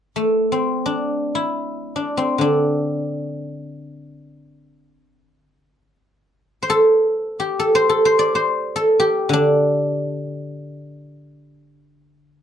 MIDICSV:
0, 0, Header, 1, 2, 480
1, 0, Start_track
1, 0, Tempo, 500000
1, 11929, End_track
2, 0, Start_track
2, 0, Title_t, "Guzheng"
2, 0, Program_c, 0, 107
2, 153, Note_on_c, 0, 57, 47
2, 499, Note_on_c, 0, 60, 45
2, 822, Note_on_c, 0, 62, 53
2, 1296, Note_on_c, 0, 64, 55
2, 1876, Note_off_c, 0, 62, 0
2, 1880, Note_on_c, 0, 62, 49
2, 2083, Note_off_c, 0, 60, 0
2, 2087, Note_on_c, 0, 60, 50
2, 2288, Note_on_c, 0, 50, 39
2, 2311, Note_off_c, 0, 62, 0
2, 2315, Note_on_c, 0, 62, 52
2, 3346, Note_off_c, 0, 57, 0
2, 3800, Note_off_c, 0, 64, 0
2, 4971, Note_off_c, 0, 60, 0
2, 5002, Note_off_c, 0, 62, 0
2, 5050, Note_off_c, 0, 50, 0
2, 6360, Note_on_c, 0, 72, 55
2, 6429, Note_on_c, 0, 69, 76
2, 7100, Note_on_c, 0, 67, 64
2, 7287, Note_off_c, 0, 69, 0
2, 7291, Note_on_c, 0, 69, 61
2, 7436, Note_off_c, 0, 72, 0
2, 7440, Note_on_c, 0, 72, 74
2, 7575, Note_off_c, 0, 69, 0
2, 7579, Note_on_c, 0, 69, 72
2, 7727, Note_off_c, 0, 72, 0
2, 7731, Note_on_c, 0, 72, 75
2, 7862, Note_on_c, 0, 74, 74
2, 8013, Note_off_c, 0, 72, 0
2, 8017, Note_on_c, 0, 72, 68
2, 8403, Note_off_c, 0, 69, 0
2, 8407, Note_on_c, 0, 69, 64
2, 8632, Note_off_c, 0, 67, 0
2, 8636, Note_on_c, 0, 67, 69
2, 8920, Note_on_c, 0, 50, 49
2, 8961, Note_on_c, 0, 62, 68
2, 9634, Note_off_c, 0, 74, 0
2, 9919, Note_off_c, 0, 72, 0
2, 10514, Note_off_c, 0, 69, 0
2, 10897, Note_off_c, 0, 67, 0
2, 11648, Note_off_c, 0, 62, 0
2, 11885, Note_off_c, 0, 50, 0
2, 11929, End_track
0, 0, End_of_file